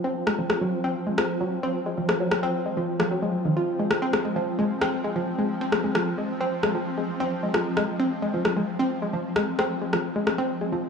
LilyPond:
<<
  \new Staff \with { instrumentName = "Synth drone" } { \clef bass \time 4/4 \key f \minor \tempo 4 = 132 <f c'>1~ | <f c'>1~ | <f c'>1~ | <f c'>1~ |
<f c'>1~ | <f c'>1 | }
  \new Staff \with { instrumentName = "Synth arpeggio sound" } { \clef bass \time 4/4 \key f \minor c'16 r16 aes16 f16 r16 ges16 r16 c'16 r16 aes16 f16 r16 ges16 r16 c'16 r16 | aes16 f16 r16 ges16 r16 c'16 r16 aes16 f16 r16 f16 ges16 aes16 r16 ees16 f'16 | r16 aes16 r16 c'16 r16 aes16 f16 r16 aes16 r16 c'16 r16 aes16 f16 r16 aes16 | r16 c'16 r16 aes16 f16 r16 aes16 r16 c'16 r16 aes16 f16 r16 aes16 r16 c'16 |
r16 aes16 f16 r16 aes16 r16 c'16 r16 aes16 f16 r16 aes16 r16 c'16 r16 aes16 | f16 r16 aes16 r16 c'16 r16 aes16 f16 r16 aes16 r16 c'16 r16 aes16 f16 r16 | }
  \new DrumStaff \with { instrumentName = "Drums" } \drummode { \time 4/4 r8 ss8 ss4 r8 ss8 r4 | r8 ss8 ss4 r8 ss8 r4 | r8 ss8 ss4 r8 ss8 r4 | r8 ss8 ss4 r8 ss8 r4 |
r8 ss8 ss4 r8 ss8 r4 | r8 ss8 ss8. ss16 r8 ss8 r4 | }
>>